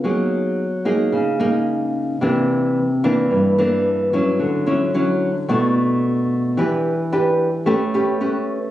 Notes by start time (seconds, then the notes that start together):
0.04 F#3 A#3 D#4 G#4
0.85 A#3 D#4 G#4
1.12 C#3
1.40 A#3 D#4 G#4
2.21 C3 E3 A#3 D4
3.04 E3 A#3 D4
3.31 G2
3.58 E3 A#3 D4
4.13 F#3 C#4 E4
4.39 D3
4.66 F#3 C#4 E4
4.94 F#3 C#4 E4
5.48 B2 A3 D4 E4
6.57 E3 D4 G4 B4
7.13 D4 G4 B4
7.66 A3 C#4 G4 B4
7.94 C#4 G4 B4
8.21 C#4 G4 B4